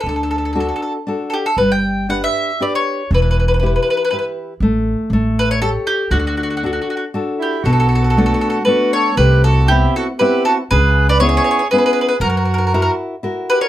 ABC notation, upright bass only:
X:1
M:3/4
L:1/8
Q:1/4=118
K:D
V:1 name="Upright bass" clef=bass
D,,4 z2 | G,,,4 z2 | E,,,4 z2 | A,,,2 A,,,4 |
D,,4 z2 | [K:Bm] B,,,4 z2 | =C,,4 z2 | C,,4 z2 |
F,,4 z2 |]